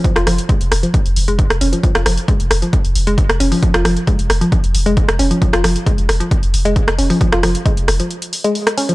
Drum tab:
HH |xxoxxxoxxxoxxxox|xxoxxxoxxxoxxxoo|xxoxxxoxxxoxxxox|xxoxxxoxxxoxxxoo|
SD |-rr---r------r--|-rr---r------r--|-rr---r------r--|-rr---r------r--|
BD |o---o---o---o---|o---o---o---o---|o---o---o---o---|o---o---o---o---|

HH |xxoxxxoxxxoxoxox|
SD |-rr---r------r--|
BD |o---o-----------|